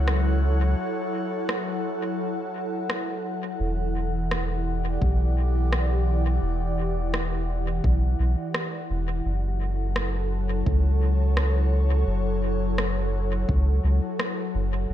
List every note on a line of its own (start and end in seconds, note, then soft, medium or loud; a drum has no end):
0.00 0.75 C#2 medium
0.00 3.61 F#3 medium
0.00 14.90 E4 medium
0.00 5.87 A4 medium
0.00 3.60 C#5 medium
0.00 14.90 F#5 medium
0.08 cross-stick medium
1.49 cross-stick medium
2.90 cross-stick medium
3.60 4.98 E1 medium
3.60 9.26 E3 medium
4.26 9.26 G4 medium
4.31 cross-stick medium
4.39 9.26 D5 medium
5.01 6.40 B1 medium
5.01 kick medium
5.73 cross-stick medium
6.42 7.81 E1 medium
7.14 cross-stick medium
7.84 8.15 B1 medium
7.84 kick loud
8.19 8.36 B1 medium
8.54 cross-stick medium
8.90 9.21 E1 medium
9.25 10.63 F#1 medium
9.25 14.90 F#3 medium
9.55 14.94 A4 medium
9.96 cross-stick medium
10.20 14.90 C#5 medium
10.66 12.04 C#2 medium
10.66 kick loud
11.37 cross-stick medium
12.07 13.45 F#1 medium
12.78 cross-stick medium
13.49 13.80 C#2 medium
13.49 kick loud
13.84 14.00 C#2 medium
14.20 cross-stick medium
14.55 14.86 F#1 medium
14.90 14.94 E1 medium
14.90 14.94 E3 medium